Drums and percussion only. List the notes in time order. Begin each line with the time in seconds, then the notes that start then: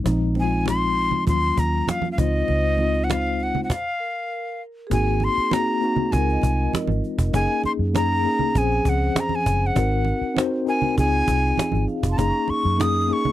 0.06 cajon bass, muted conga
0.35 cajon slap, muted conga
0.66 cajon slap, high conga
0.96 cajon slap
1.11 low conga
1.26 cajon bass, cajon slap, muted conga
1.43 cajon slap
1.56 cajon bass, muted conga
1.88 cajon slap, high conga
2.02 cajon slap, high conga
2.18 cajon bass, high conga
2.48 cajon slap, muted conga
2.78 cajon slap, muted conga
2.93 cajon slap
3.10 cajon slap, high conga
3.39 cajon slap
3.55 low conga
3.70 cajon bass, cajon slap
4.91 cajon bass, muted conga
5.20 cajon slap, muted conga
5.51 cajon slap, high conga
5.81 cajon slap
5.96 low conga
6.12 cajon bass, cajon slap, muted conga
6.29 cajon slap
6.42 cajon bass, muted conga
6.73 cajon slap, high conga
6.87 cajon slap, high conga
7.04 cajon slap
7.18 cajon bass
7.33 cajon bass, muted conga
7.63 cajon slap, muted conga
7.95 cajon slap, high conga
8.24 cajon slap
8.39 low conga
8.55 cajon bass, cajon slap, muted conga
8.71 cajon slap
8.85 cajon bass
9.16 cajon slap, high conga
9.29 cajon slap, high conga
9.46 cajon bass
9.76 cajon bass, muted conga
10.05 cajon slap, muted conga
10.36 cajon slap, high conga
10.66 cajon slap
10.82 low conga
10.97 cajon bass, cajon slap, muted conga
11.14 cajon slap
11.27 cajon bass, muted conga
11.57 cajon slap, high conga
11.72 cajon slap, high conga
11.88 cajon slap
12.03 cajon bass
12.18 cajon bass, muted conga
12.48 cajon slap, muted conga
12.64 cajon slap
12.80 cajon slap, high conga
13.09 cajon slap
13.25 low conga